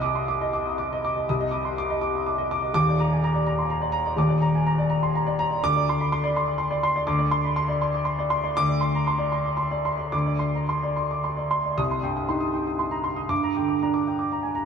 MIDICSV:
0, 0, Header, 1, 2, 480
1, 0, Start_track
1, 0, Key_signature, -3, "minor"
1, 0, Tempo, 493421
1, 1238, Time_signature, 3, 2, 24, 8
1, 2673, Tempo, 475059
1, 4593, Tempo, 487013
1, 8433, Tempo, 514580
1, 9393, Tempo, 552995
1, 11313, Tempo, 501253
1, 14057, End_track
2, 0, Start_track
2, 0, Title_t, "Grand piano"
2, 0, Program_c, 0, 0
2, 0, Control_c, 0, 64, 127
2, 0, Note_on_c, 0, 36, 72
2, 0, Note_on_c, 0, 75, 63
2, 0, Note_on_c, 0, 87, 86
2, 18, Note_on_c, 0, 86, 64
2, 100, Note_off_c, 0, 75, 0
2, 149, Note_on_c, 0, 84, 48
2, 220, Note_off_c, 0, 86, 0
2, 274, Note_off_c, 0, 84, 0
2, 275, Note_on_c, 0, 86, 60
2, 401, Note_on_c, 0, 75, 62
2, 471, Note_off_c, 0, 86, 0
2, 519, Note_on_c, 0, 86, 61
2, 595, Note_off_c, 0, 75, 0
2, 654, Note_off_c, 0, 87, 0
2, 654, Note_on_c, 0, 87, 42
2, 714, Note_off_c, 0, 86, 0
2, 761, Note_on_c, 0, 86, 63
2, 769, Note_off_c, 0, 87, 0
2, 902, Note_on_c, 0, 75, 62
2, 953, Note_off_c, 0, 86, 0
2, 1018, Note_on_c, 0, 86, 67
2, 1082, Note_off_c, 0, 75, 0
2, 1132, Note_on_c, 0, 75, 57
2, 1193, Note_off_c, 0, 36, 0
2, 1199, Note_off_c, 0, 86, 0
2, 1256, Control_c, 0, 64, 0
2, 1256, Note_on_c, 0, 36, 71
2, 1257, Note_on_c, 0, 87, 67
2, 1316, Note_off_c, 0, 75, 0
2, 1370, Note_on_c, 0, 75, 61
2, 1407, Control_c, 0, 64, 127
2, 1438, Note_off_c, 0, 87, 0
2, 1473, Note_on_c, 0, 86, 67
2, 1554, Note_off_c, 0, 75, 0
2, 1604, Note_on_c, 0, 84, 52
2, 1665, Note_off_c, 0, 86, 0
2, 1719, Note_off_c, 0, 84, 0
2, 1735, Note_on_c, 0, 86, 71
2, 1850, Note_on_c, 0, 75, 63
2, 1917, Note_off_c, 0, 86, 0
2, 1959, Note_on_c, 0, 86, 65
2, 2035, Note_off_c, 0, 75, 0
2, 2093, Note_on_c, 0, 87, 44
2, 2149, Note_off_c, 0, 86, 0
2, 2203, Note_on_c, 0, 86, 59
2, 2204, Note_off_c, 0, 87, 0
2, 2318, Note_on_c, 0, 75, 62
2, 2391, Note_off_c, 0, 86, 0
2, 2444, Note_on_c, 0, 86, 72
2, 2508, Note_off_c, 0, 75, 0
2, 2551, Note_on_c, 0, 75, 55
2, 2630, Note_off_c, 0, 86, 0
2, 2643, Note_off_c, 0, 36, 0
2, 2661, Note_on_c, 0, 27, 74
2, 2669, Note_on_c, 0, 86, 91
2, 2672, Note_off_c, 0, 75, 0
2, 2673, Note_on_c, 0, 39, 74
2, 2693, Control_c, 0, 64, 0
2, 2816, Note_on_c, 0, 74, 58
2, 2861, Control_c, 0, 64, 127
2, 2865, Note_off_c, 0, 86, 0
2, 2930, Note_on_c, 0, 82, 67
2, 2996, Note_off_c, 0, 74, 0
2, 3053, Note_on_c, 0, 80, 53
2, 3112, Note_off_c, 0, 82, 0
2, 3161, Note_off_c, 0, 80, 0
2, 3171, Note_on_c, 0, 82, 70
2, 3275, Note_on_c, 0, 74, 62
2, 3350, Note_off_c, 0, 82, 0
2, 3398, Note_on_c, 0, 82, 63
2, 3463, Note_off_c, 0, 74, 0
2, 3520, Note_on_c, 0, 84, 50
2, 3585, Note_off_c, 0, 82, 0
2, 3634, Note_off_c, 0, 84, 0
2, 3636, Note_on_c, 0, 82, 64
2, 3752, Note_on_c, 0, 74, 63
2, 3824, Note_off_c, 0, 82, 0
2, 3859, Note_on_c, 0, 82, 77
2, 3941, Note_off_c, 0, 74, 0
2, 3998, Note_on_c, 0, 74, 61
2, 4054, Note_off_c, 0, 82, 0
2, 4059, Note_off_c, 0, 27, 0
2, 4066, Note_off_c, 0, 39, 0
2, 4102, Note_on_c, 0, 27, 74
2, 4122, Note_on_c, 0, 39, 76
2, 4123, Control_c, 0, 64, 0
2, 4124, Note_on_c, 0, 86, 70
2, 4184, Note_off_c, 0, 74, 0
2, 4231, Note_on_c, 0, 74, 65
2, 4291, Control_c, 0, 64, 127
2, 4308, Note_off_c, 0, 86, 0
2, 4360, Note_on_c, 0, 82, 70
2, 4423, Note_off_c, 0, 74, 0
2, 4496, Note_on_c, 0, 80, 56
2, 4550, Note_off_c, 0, 82, 0
2, 4606, Note_off_c, 0, 80, 0
2, 4610, Note_on_c, 0, 82, 70
2, 4726, Note_on_c, 0, 74, 66
2, 4793, Note_off_c, 0, 82, 0
2, 4839, Note_on_c, 0, 82, 64
2, 4910, Note_off_c, 0, 74, 0
2, 4968, Note_on_c, 0, 84, 56
2, 5026, Note_off_c, 0, 82, 0
2, 5078, Note_off_c, 0, 84, 0
2, 5092, Note_on_c, 0, 82, 62
2, 5202, Note_on_c, 0, 74, 67
2, 5271, Note_off_c, 0, 82, 0
2, 5325, Note_on_c, 0, 82, 77
2, 5387, Note_off_c, 0, 74, 0
2, 5441, Note_on_c, 0, 74, 62
2, 5506, Note_off_c, 0, 27, 0
2, 5508, Note_off_c, 0, 82, 0
2, 5516, Note_off_c, 0, 39, 0
2, 5554, Note_off_c, 0, 74, 0
2, 5565, Note_on_c, 0, 38, 78
2, 5567, Control_c, 0, 64, 0
2, 5568, Note_on_c, 0, 86, 101
2, 5690, Note_on_c, 0, 74, 65
2, 5745, Control_c, 0, 64, 127
2, 5750, Note_off_c, 0, 86, 0
2, 5821, Note_on_c, 0, 84, 73
2, 5871, Note_off_c, 0, 74, 0
2, 5931, Note_on_c, 0, 83, 59
2, 5996, Note_off_c, 0, 84, 0
2, 6039, Note_off_c, 0, 83, 0
2, 6047, Note_on_c, 0, 84, 78
2, 6160, Note_on_c, 0, 74, 69
2, 6227, Note_off_c, 0, 84, 0
2, 6285, Note_on_c, 0, 84, 68
2, 6341, Note_off_c, 0, 74, 0
2, 6392, Note_on_c, 0, 86, 48
2, 6462, Note_off_c, 0, 84, 0
2, 6498, Note_on_c, 0, 84, 67
2, 6504, Note_off_c, 0, 86, 0
2, 6621, Note_on_c, 0, 74, 70
2, 6688, Note_off_c, 0, 84, 0
2, 6747, Note_on_c, 0, 84, 80
2, 6810, Note_off_c, 0, 74, 0
2, 6870, Note_on_c, 0, 74, 63
2, 6934, Note_off_c, 0, 84, 0
2, 6946, Note_off_c, 0, 38, 0
2, 6979, Note_on_c, 0, 86, 72
2, 6982, Note_on_c, 0, 38, 87
2, 6995, Control_c, 0, 64, 0
2, 7055, Note_off_c, 0, 74, 0
2, 7096, Note_on_c, 0, 74, 68
2, 7136, Control_c, 0, 64, 127
2, 7169, Note_off_c, 0, 86, 0
2, 7221, Note_on_c, 0, 84, 79
2, 7288, Note_off_c, 0, 74, 0
2, 7347, Note_on_c, 0, 83, 59
2, 7411, Note_off_c, 0, 84, 0
2, 7462, Note_off_c, 0, 83, 0
2, 7465, Note_on_c, 0, 84, 73
2, 7585, Note_on_c, 0, 74, 70
2, 7655, Note_off_c, 0, 84, 0
2, 7715, Note_on_c, 0, 84, 63
2, 7776, Note_off_c, 0, 74, 0
2, 7840, Note_on_c, 0, 86, 54
2, 7903, Note_off_c, 0, 84, 0
2, 7946, Note_on_c, 0, 84, 68
2, 7953, Note_off_c, 0, 86, 0
2, 8080, Note_on_c, 0, 74, 69
2, 8141, Note_off_c, 0, 84, 0
2, 8195, Note_on_c, 0, 84, 76
2, 8269, Note_off_c, 0, 74, 0
2, 8327, Note_on_c, 0, 74, 62
2, 8388, Note_off_c, 0, 84, 0
2, 8398, Note_off_c, 0, 38, 0
2, 8441, Note_off_c, 0, 74, 0
2, 8449, Control_c, 0, 64, 0
2, 8455, Note_on_c, 0, 86, 99
2, 8457, Note_on_c, 0, 38, 83
2, 8567, Note_on_c, 0, 74, 60
2, 8609, Control_c, 0, 64, 127
2, 8632, Note_off_c, 0, 86, 0
2, 8680, Note_on_c, 0, 84, 66
2, 8747, Note_off_c, 0, 74, 0
2, 8812, Note_on_c, 0, 82, 55
2, 8864, Note_off_c, 0, 84, 0
2, 8918, Note_off_c, 0, 82, 0
2, 8925, Note_on_c, 0, 84, 68
2, 9030, Note_on_c, 0, 74, 68
2, 9108, Note_off_c, 0, 84, 0
2, 9157, Note_on_c, 0, 84, 60
2, 9222, Note_off_c, 0, 74, 0
2, 9281, Note_on_c, 0, 86, 49
2, 9349, Note_off_c, 0, 84, 0
2, 9389, Note_on_c, 0, 84, 64
2, 9399, Note_off_c, 0, 86, 0
2, 9515, Note_on_c, 0, 74, 64
2, 9579, Note_off_c, 0, 84, 0
2, 9634, Note_on_c, 0, 84, 62
2, 9703, Note_off_c, 0, 74, 0
2, 9740, Note_on_c, 0, 74, 59
2, 9825, Note_off_c, 0, 84, 0
2, 9848, Note_off_c, 0, 38, 0
2, 9869, Note_on_c, 0, 38, 70
2, 9870, Note_on_c, 0, 86, 69
2, 9890, Control_c, 0, 64, 0
2, 9942, Note_off_c, 0, 74, 0
2, 9992, Note_on_c, 0, 74, 56
2, 10041, Control_c, 0, 64, 127
2, 10070, Note_off_c, 0, 86, 0
2, 10104, Note_on_c, 0, 84, 60
2, 10194, Note_off_c, 0, 74, 0
2, 10243, Note_on_c, 0, 82, 44
2, 10312, Note_off_c, 0, 84, 0
2, 10363, Note_on_c, 0, 84, 64
2, 10369, Note_off_c, 0, 82, 0
2, 10487, Note_on_c, 0, 74, 57
2, 10562, Note_off_c, 0, 84, 0
2, 10601, Note_on_c, 0, 84, 54
2, 10681, Note_off_c, 0, 74, 0
2, 10726, Note_on_c, 0, 86, 46
2, 10795, Note_off_c, 0, 84, 0
2, 10840, Note_on_c, 0, 84, 54
2, 10845, Note_off_c, 0, 86, 0
2, 10952, Note_on_c, 0, 74, 55
2, 11031, Note_off_c, 0, 84, 0
2, 11072, Note_on_c, 0, 84, 63
2, 11147, Note_off_c, 0, 74, 0
2, 11195, Note_on_c, 0, 74, 54
2, 11263, Note_off_c, 0, 84, 0
2, 11277, Note_off_c, 0, 38, 0
2, 11301, Note_on_c, 0, 36, 65
2, 11305, Note_on_c, 0, 87, 79
2, 11311, Note_off_c, 0, 74, 0
2, 11334, Control_c, 0, 64, 0
2, 11436, Note_on_c, 0, 84, 54
2, 11489, Control_c, 0, 64, 127
2, 11506, Note_off_c, 0, 87, 0
2, 11544, Note_on_c, 0, 43, 49
2, 11549, Note_on_c, 0, 79, 53
2, 11632, Note_off_c, 0, 84, 0
2, 11679, Note_on_c, 0, 87, 51
2, 11749, Note_off_c, 0, 79, 0
2, 11792, Note_on_c, 0, 84, 56
2, 11793, Note_on_c, 0, 63, 52
2, 11875, Note_off_c, 0, 87, 0
2, 11907, Note_on_c, 0, 87, 56
2, 11941, Note_off_c, 0, 43, 0
2, 11991, Note_off_c, 0, 84, 0
2, 12035, Note_on_c, 0, 79, 49
2, 12108, Note_off_c, 0, 87, 0
2, 12163, Note_on_c, 0, 87, 46
2, 12184, Note_off_c, 0, 63, 0
2, 12233, Note_off_c, 0, 79, 0
2, 12277, Note_on_c, 0, 84, 53
2, 12357, Note_off_c, 0, 87, 0
2, 12391, Note_on_c, 0, 82, 50
2, 12475, Note_off_c, 0, 84, 0
2, 12513, Note_on_c, 0, 84, 58
2, 12521, Note_off_c, 0, 82, 0
2, 12633, Note_on_c, 0, 87, 53
2, 12715, Note_off_c, 0, 84, 0
2, 12726, Note_off_c, 0, 36, 0
2, 12752, Note_on_c, 0, 43, 65
2, 12756, Note_on_c, 0, 86, 74
2, 12763, Note_off_c, 0, 87, 0
2, 12787, Control_c, 0, 64, 0
2, 12891, Note_on_c, 0, 82, 57
2, 12935, Control_c, 0, 64, 127
2, 12956, Note_off_c, 0, 86, 0
2, 13018, Note_on_c, 0, 50, 50
2, 13019, Note_on_c, 0, 79, 52
2, 13083, Note_off_c, 0, 82, 0
2, 13132, Note_on_c, 0, 86, 47
2, 13206, Note_off_c, 0, 79, 0
2, 13266, Note_on_c, 0, 62, 54
2, 13266, Note_on_c, 0, 82, 58
2, 13321, Note_off_c, 0, 86, 0
2, 13375, Note_on_c, 0, 86, 55
2, 13394, Note_off_c, 0, 50, 0
2, 13446, Note_off_c, 0, 82, 0
2, 13505, Note_on_c, 0, 79, 52
2, 13559, Note_off_c, 0, 86, 0
2, 13615, Note_on_c, 0, 86, 49
2, 13634, Note_off_c, 0, 62, 0
2, 13682, Note_off_c, 0, 79, 0
2, 13739, Note_on_c, 0, 82, 56
2, 13796, Note_off_c, 0, 86, 0
2, 13846, Note_on_c, 0, 80, 48
2, 13917, Note_off_c, 0, 82, 0
2, 13959, Note_off_c, 0, 80, 0
2, 13961, Note_on_c, 0, 82, 59
2, 14057, Note_off_c, 0, 43, 0
2, 14057, Note_off_c, 0, 82, 0
2, 14057, End_track
0, 0, End_of_file